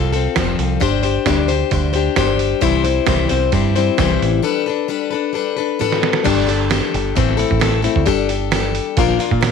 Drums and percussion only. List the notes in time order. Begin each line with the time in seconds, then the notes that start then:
0.14 open hi-hat
0.36 kick, snare, open hi-hat
0.59 open hi-hat
0.81 kick, open hi-hat
1.03 open hi-hat
1.26 kick, snare, open hi-hat
1.49 open hi-hat
1.71 kick, open hi-hat
1.94 open hi-hat
2.16 kick, snare, open hi-hat
2.39 open hi-hat
2.61 kick, open hi-hat
2.85 open hi-hat
3.07 kick, snare, open hi-hat
3.29 snare, open hi-hat
3.52 kick, open hi-hat
3.76 open hi-hat
3.98 kick, snare, open hi-hat
4.22 open hi-hat
5.81 high tom
5.92 snare
6.03 snare
6.13 snare
6.25 kick, open hi-hat, crash
6.49 open hi-hat
6.71 snare, open hi-hat
6.94 open hi-hat
7.17 kick, open hi-hat
7.29 snare
7.39 open hi-hat
7.51 kick
7.61 snare, open hi-hat
7.84 open hi-hat
7.96 kick
8.06 kick, open hi-hat
8.29 open hi-hat
8.52 snare, open hi-hat
8.75 open hi-hat
8.97 kick, open hi-hat
9.09 snare
9.20 open hi-hat
9.31 kick
9.43 snare, open hi-hat